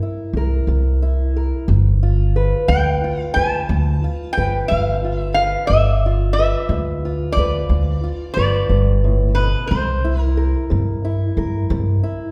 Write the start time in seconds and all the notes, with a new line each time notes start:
Already playing: C3 A#4
0.02 E4
0.33 C2 A#4
0.67 C2 C3
1.02 E4
1.36 A#4
1.68 G1 G2
2.03 F4
2.36 B4
2.68 D2 G2 G5
3.04 F4
3.20 F5
3.34 D2 B4 A5
3.69 D2 G2
4.04 F4
4.33 G5
4.37 G1 B4
4.68 G1 G2 F5
5.04 F4
5.17 E5
5.34 B4 F5
5.67 G1 G2 E5
6.06 F4
6.33 E5
6.39 B4
6.69 D2 G2
7.05 F4
7.32 D5
7.37 D2 B4
7.69 D2 G2
8.04 F4
8.34 G1 B4 D5
8.69 G1 G2
9.04 A2
9.35 B2 B4
9.67 C2 C3 C5
10.04 E4
10.20 A#4
10.37 A#4
10.70 G2 C3
11.05 E4
11.37 G2 A#4
11.70 G2 C3
12.03 E4